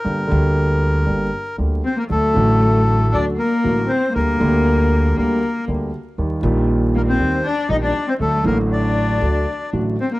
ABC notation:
X:1
M:4/4
L:1/16
Q:1/4=118
K:Gm
V:1 name="Bandoneon"
B12 z2 c B | A8 d2 B4 c2 | B8 B4 z4 | z6 B c3 d2 e d2 c |
A2 B2 d8 z2 c B |]
V:2 name="Cello"
z12 z2 C B, | A,8 D2 B,4 C2 | B,8 B,4 z4 | z6 B, C3 D2 E D2 C |
A,2 B,2 D8 z2 C B, |]
V:3 name="Grand piano" clef=bass
[G,,,G,,D,G,B,G]2 [D,,D,G,B,G]6 [G,,,G,,D,G,B,G]2 z2 [D,,D,G,B,G]2 z2 | [D,,D,^F,A,^F]2 [A,,,A,,D,F,A,F]6 [D,,D,F,A,F]2 z2 [A,,,A,,D,F,A,F]2 z2 | [D,,D,G,B,G]2 [D,,D,G,B,G]6 [D,,D,G,B,G]2 z2 [D,,D,G,B,G]2 z2 | [E,,E,G,B,G]2 [B,,,B,,E,G,B,G]6 [E,,E,G,B,G]2 z2 [B,,,B,,E,G,B,G]2 z2 |
[D,,D,^F,A,^F]2 [A,,,A,,D,F,A,F]6 [D,,D,F,A,F]2 z2 [A,,,A,,D,F,A,F]2 z2 |]
V:4 name="Upright bass" clef=bass
G,,,2 D,,6 G,,,2 z2 D,,2 z2 | D,,2 A,,,6 D,,2 z2 A,,,2 z2 | D,,2 D,,6 D,,2 z2 D,,2 z2 | E,,2 B,,,6 E,,2 z2 B,,,2 z2 |
D,,2 A,,,6 D,,2 z2 A,,,2 z2 |]